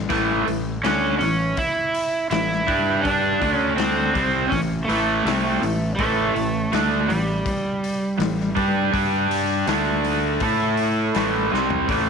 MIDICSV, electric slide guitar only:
0, 0, Header, 1, 2, 480
1, 0, Start_track
1, 0, Tempo, 736196
1, 67, Time_signature, 4, 2, 24, 8
1, 7885, End_track
2, 0, Start_track
2, 0, Title_t, "Electric slide guitar"
2, 0, Program_c, 0, 29
2, 545, Note_on_c, 0, 61, 91
2, 766, Note_off_c, 0, 61, 0
2, 774, Note_on_c, 0, 61, 81
2, 1027, Note_off_c, 0, 61, 0
2, 1029, Note_on_c, 0, 64, 95
2, 1481, Note_off_c, 0, 64, 0
2, 1503, Note_on_c, 0, 64, 100
2, 1958, Note_off_c, 0, 64, 0
2, 1965, Note_on_c, 0, 62, 98
2, 2317, Note_off_c, 0, 62, 0
2, 2317, Note_on_c, 0, 61, 98
2, 2454, Note_off_c, 0, 61, 0
2, 2457, Note_on_c, 0, 60, 96
2, 2925, Note_off_c, 0, 60, 0
2, 2928, Note_on_c, 0, 61, 91
2, 2995, Note_off_c, 0, 61, 0
2, 3161, Note_on_c, 0, 57, 86
2, 3866, Note_off_c, 0, 57, 0
2, 3883, Note_on_c, 0, 57, 89
2, 4616, Note_on_c, 0, 55, 74
2, 4636, Note_off_c, 0, 57, 0
2, 6035, Note_off_c, 0, 55, 0
2, 7885, End_track
0, 0, End_of_file